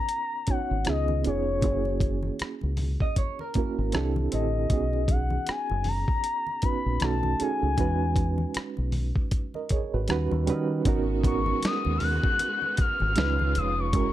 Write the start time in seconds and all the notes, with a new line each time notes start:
Already playing: B3 C#4 D#4 F#4 A#4 A#5
0.09 closed hi-hat
0.47 B3 C#4 D#4 F#4 C#5 F#5, muted fingered electric bass stroke, kick, closed hi-hat
0.71 G#1
0.85 C#2 B3 C#4 D#4 F4 G#4 D#5, cross-stick, closed hi-hat, high conga
1.08 muted conga, high conga
1.24 F1 B3 C#4 D#4 F4 G#4 C#5, closed hi-hat
1.61 F#1 A#3 C#4 E4 F#4, kick, closed hi-hat, muted conga, low conga
1.65 G#4
1.85 muted conga
2.00 kick, closed hi-hat, high conga
2.23 high conga
2.39 muted fingered electric bass stroke, cross-stick, closed hi-hat
2.61 C#2, muted conga
2.77 open hi-hat, high conga, low conga
3.00 D#5, kick
3.16 C#5, kick, closed hi-hat, muted conga
3.39 A#4, muted conga
3.54 A#3 C#4 E4 F#4, muted fingered electric bass stroke, kick, closed hi-hat
3.58 A#4
3.78 G#1
3.92 C2 C4 D4 E4 G4, cross-stick, closed hi-hat, high conga
3.96 A4
4.16 muted conga, high conga
4.32 A1 D3 C4 E4 G4 A4 D#5, closed hi-hat
4.70 B1 B3 C#4 D#4 F#4 G#4, kick, closed hi-hat, muted conga, low conga
4.93 muted conga
5.08 F#5, kick, closed hi-hat, high conga
5.30 high conga
5.47 G#5, muted fingered electric bass stroke, cross-stick, closed hi-hat, muted conga
5.70 F#1, muted conga
5.84 A#5, open hi-hat, high conga, low conga
6.08 kick
6.24 closed hi-hat
6.47 muted conga
6.62 B3 C#4 D#4 F#4 B4 B5, muted fingered electric bass stroke, kick, closed hi-hat
6.86 A#1
7.00 B1 A3 C#4 D#4 F#4 A5, cross-stick, closed hi-hat, muted conga, high conga
7.04 A4
7.23 muted conga, high conga
7.40 C#4 D#4 F#4 G#4 A4 G#5, muted fingered electric bass stroke, closed hi-hat
7.63 C#2
7.77 E2 G#3 C#4 D#4 F#4 B4, kick, closed hi-hat, muted conga, low conga
8.16 kick, closed hi-hat, high conga
8.38 high conga
8.54 muted fingered electric bass stroke, cross-stick, closed hi-hat
8.77 B1, muted conga
8.92 open hi-hat, high conga, low conga
9.16 kick
9.31 kick, closed hi-hat
9.54 A#4 D#5, muted conga
9.69 G#4 C#5, muted fingered electric bass stroke, kick, closed hi-hat
9.94 G#1 F#4 B4
10.08 D#2 G3 C#4 D#4 F#4, cross-stick, closed hi-hat, high conga
10.12 B4
10.31 D#2, muted conga, high conga
10.47 D#3 G3 C#4 D#4 F#4 B4, closed hi-hat
10.85 G#1 G#3 B3 C#4 D#4 F#4 A#4, kick, closed hi-hat, muted conga, low conga
11.24 B3 C#4 D#4 F#4 A#4 C#6, kick, closed hi-hat, high conga
11.46 high conga
11.62 D#6, muted fingered electric bass stroke, snare, closed hi-hat, muted conga
11.85 D#2, muted conga
11.98 F6, open hi-hat, high conga, low conga
12.03 F#6
12.24 kick
12.39 closed hi-hat, muted conga
12.62 muted conga
12.77 F6, muted fingered electric bass stroke, kick, closed hi-hat
13.00 G#1, high conga
13.16 C#2 C#3 G#3 C#4 D#4 F4 B4, snare, closed hi-hat, muted conga, high conga
13.39 high conga
13.55 F1 D#6, closed hi-hat
13.79 C#6
13.93 F#1 F#3 G#3 C#4 E4 F#4 G#4 A#4, kick, closed hi-hat, muted conga, low conga